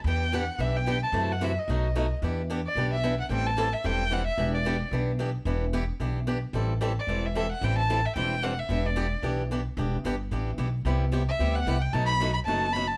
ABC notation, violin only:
X:1
M:4/4
L:1/8
Q:"Swing" 1/4=222
K:Em
V:1 name="Violin"
g2 f2 e g2 a- | a f e ^d4 z | z3 d2 e2 f | g a2 e g2 f e- |
e d3 z4 | z8 | z3 d2 e e f | g a2 e g2 f e- |
e d3 z4 | z8 | z3 e2 f2 g | a b2 b a2 b a |]